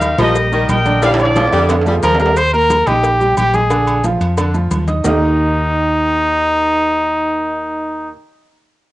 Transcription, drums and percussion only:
0.01 cowbell medium
0.01 high conga medium
0.01 low agogo medium
0.01 maracas medium
0.18 cowbell medium
0.18 high conga loud
0.18 low conga medium
0.18 low agogo loud
0.18 maracas soft
0.35 cowbell loud
0.35 maracas medium
0.52 high conga soft
0.52 maracas soft
0.69 cowbell medium
0.69 high conga loud
0.69 low agogo loud
0.69 maracas medium
0.85 cowbell medium
0.85 high conga loud
0.85 maracas soft
1.02 cowbell loud
1.02 high timbale medium
1.02 low agogo medium
1.02 maracas medium
1.14 high timbale loud
1.19 high conga soft
1.19 low agogo loud
1.19 maracas soft
1.25 high timbale loud
1.36 cowbell medium
1.36 high conga medium
1.36 high timbale loud
1.36 maracas medium
1.47 low timbale medium
1.52 cowbell medium
1.52 low agogo medium
1.52 maracas soft
1.59 low timbale medium
1.69 cowbell loud
1.69 high conga soft
1.69 low timbale loud
1.69 low agogo loud
1.69 maracas medium
1.81 low timbale medium
1.86 high conga soft
1.86 maracas soft
1.92 low timbale medium
2.03 cowbell medium
2.03 high conga loud
2.03 low agogo medium
2.03 maracas medium
2.15 low timbale loud
2.20 cowbell medium
2.20 maracas soft
2.26 low timbale loud
2.36 cowbell loud
2.36 high conga soft
2.36 low agogo loud
2.36 maracas medium
2.53 high conga soft
2.53 maracas soft
2.70 cowbell medium
2.70 high conga loud
2.70 low agogo medium
2.70 maracas medium
2.87 cowbell medium
2.87 high conga loud
2.87 low conga medium
2.87 low agogo loud
2.87 maracas soft
3.03 cowbell loud
3.03 high conga soft
3.03 maracas medium
3.20 high conga soft
3.20 maracas soft
3.37 cowbell medium
3.37 high conga medium
3.37 low agogo loud
3.37 maracas medium
3.53 cowbell medium
3.53 high conga medium
3.53 maracas soft
3.70 cowbell loud
3.70 low agogo medium
3.70 maracas medium
3.87 high conga soft
3.87 low agogo loud
3.87 maracas soft
4.04 cowbell medium
4.04 high conga medium
4.04 maracas medium
4.21 cowbell medium
4.21 high conga soft
4.21 low agogo medium
4.21 maracas soft
4.37 cowbell medium
4.37 high conga soft
4.37 low agogo loud
4.37 maracas medium
4.54 high conga soft
4.54 maracas soft
4.71 cowbell medium
4.71 high conga loud
4.71 low agogo medium
4.71 maracas medium
4.88 cowbell medium
4.88 high conga medium
4.88 maracas soft
5.04 low bongo medium
5.04 low conga medium
5.04 low timbale loud
5.04 maracas loud

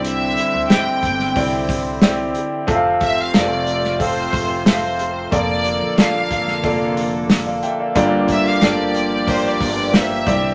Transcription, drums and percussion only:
0.04 hi-hat pedal medium
0.04 open hi-hat loud
0.37 hi-hat pedal medium
0.37 open hi-hat medium
0.70 snare loud
0.70 hi-hat pedal medium
0.70 open hi-hat loud
1.03 kick medium
1.03 hi-hat pedal medium
1.03 open hi-hat medium
1.19 snare soft
1.36 kick medium
1.36 hi-hat pedal medium
1.36 open hi-hat medium
1.69 kick medium
1.69 hi-hat pedal medium
1.69 open hi-hat medium
2.02 snare loud
2.02 hi-hat pedal medium
2.02 open hi-hat medium
2.35 hi-hat pedal medium
2.35 open hi-hat medium
2.68 kick loud
2.68 hi-hat pedal medium
2.68 open hi-hat loud
3.01 kick medium
3.01 hi-hat pedal medium
3.01 open hi-hat medium
3.34 snare loud
3.34 hi-hat pedal medium
3.34 open hi-hat loud
3.67 hi-hat pedal medium
3.67 open hi-hat medium
3.84 snare soft
4.00 kick medium
4.00 hi-hat pedal medium
4.00 open hi-hat medium
4.33 kick medium
4.33 hi-hat pedal medium
4.33 open hi-hat medium
4.66 snare loud
4.66 hi-hat pedal medium
4.66 open hi-hat medium
4.99 hi-hat pedal medium
4.99 open hi-hat medium
5.32 kick loud
5.32 hi-hat pedal medium
5.32 open hi-hat loud
5.64 hi-hat pedal medium
5.64 open hi-hat medium
5.98 snare loud
5.98 hi-hat pedal medium
5.98 open hi-hat loud
6.31 kick medium
6.31 hi-hat pedal medium
6.31 open hi-hat medium
6.47 snare soft
6.64 kick medium
6.64 hi-hat pedal medium
6.64 open hi-hat medium
6.97 hi-hat pedal medium
6.97 open hi-hat medium
7.30 snare loud
7.30 hi-hat pedal medium
7.30 open hi-hat medium
7.63 hi-hat pedal medium
7.63 open hi-hat medium
7.96 kick loud
7.96 hi-hat pedal medium
7.96 open hi-hat loud
8.28 kick medium
8.28 hi-hat pedal medium
8.28 open hi-hat medium
8.61 snare loud
8.61 hi-hat pedal medium
8.61 open hi-hat medium
8.94 hi-hat pedal medium
8.94 open hi-hat medium
9.28 kick loud
9.28 hi-hat pedal medium
9.28 open hi-hat medium
9.61 kick medium
9.61 hi-hat pedal medium
9.61 open hi-hat medium
9.94 snare loud
9.94 hi-hat pedal medium
9.94 open hi-hat medium
10.27 kick loud
10.27 hi-hat pedal medium
10.27 open hi-hat medium

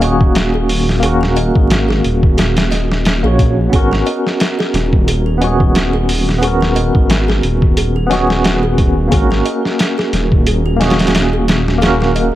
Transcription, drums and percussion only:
0.02 closed hi-hat medium
0.21 kick medium
0.35 snare loud
0.35 closed hi-hat medium
0.69 open hi-hat medium
0.89 snare soft
1.03 closed hi-hat medium
1.23 snare soft
1.37 closed hi-hat medium
1.56 kick medium
1.70 snare loud
1.70 closed hi-hat medium
1.90 snare soft
2.04 closed hi-hat medium
2.23 kick medium
2.38 snare loud
2.38 closed hi-hat medium
2.57 snare loud
2.57 closed hi-hat medium
2.72 snare soft
2.72 closed hi-hat medium
2.92 snare medium
3.05 snare loud
3.05 closed hi-hat medium
3.39 kick medium
3.39 closed hi-hat medium
3.73 kick loud
3.73 closed hi-hat medium
3.93 snare medium
4.07 closed hi-hat medium
4.27 snare soft
4.40 snare loud
4.40 closed hi-hat medium
4.60 snare soft
4.74 snare soft
4.74 closed hi-hat medium
4.93 kick medium
5.08 closed hi-hat medium
5.42 closed hi-hat medium
5.60 kick medium
5.75 snare loud
5.75 closed hi-hat medium
6.09 open hi-hat medium
6.29 snare soft
6.43 closed hi-hat medium
6.62 snare medium
6.76 closed hi-hat medium
6.95 kick medium
7.10 snare loud
7.10 closed hi-hat medium
7.30 snare soft
7.43 closed hi-hat medium
7.62 kick medium
7.77 closed hi-hat medium
8.11 snare soft
8.11 closed hi-hat medium
8.30 snare medium
8.44 snare loud
8.44 closed hi-hat medium
8.78 kick medium
8.78 closed hi-hat medium
9.12 kick loud
9.12 closed hi-hat medium
9.32 snare soft
9.46 closed hi-hat medium
9.65 snare soft
9.79 snare loud
9.79 closed hi-hat medium
9.99 snare soft
10.13 snare soft
10.13 closed hi-hat medium
10.32 kick medium
10.47 closed hi-hat medium
10.81 snare medium
10.81 closed hi-hat medium
10.90 snare medium
10.90 closed hi-hat medium
10.99 snare medium
10.99 closed hi-hat medium
11.07 snare medium
11.07 closed hi-hat medium
11.15 snare loud
11.15 closed hi-hat medium
11.48 snare loud
11.48 closed hi-hat medium
11.68 snare soft
11.82 snare loud
11.82 closed hi-hat medium
12.02 snare soft
12.16 closed hi-hat medium

